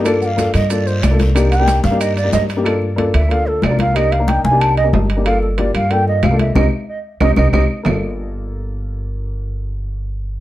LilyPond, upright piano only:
\new Staff \with { instrumentName = "Upright piano" } { \time 4/4 \key g \minor \tempo 4 = 184 <bes d' f' a'>8. r16 <bes d' f' a'>8. r16 <bes d' f' a'>4 r16 <bes d' f' a'>8 r16 | <bes d' ees' g'>8 r16 <bes d' ees' g'>8. r16 <bes d' ees' g'>8. r16 <bes d' ees' g'>8. r16 <bes d' ees' g'>16 | <bes d' f' a'>8. r16 <bes d' f' a'>8. r16 <bes d' f' a'>4 r16 <bes d' f' bes'>8 r16 | <bes d' ees' g'>8 r16 <bes d' ees' bes'>8. r16 <bes d' ees' g'>8. r16 <bes d' ees' g'>8. r16 <bes d' ees' g'>16 |
<bes d' f' a'>8. r16 <bes d' f' g'>8. r16 <bes d' f' a'>4 r16 <bes d' f' a'>8 r16 | <c' ees' g'>8 r4. <c' ees' g'>8 <c' ees' g'>8 <c' ees' g'>8 r8 | <bes d' f' a'>1~ | <bes d' f' a'>1 | }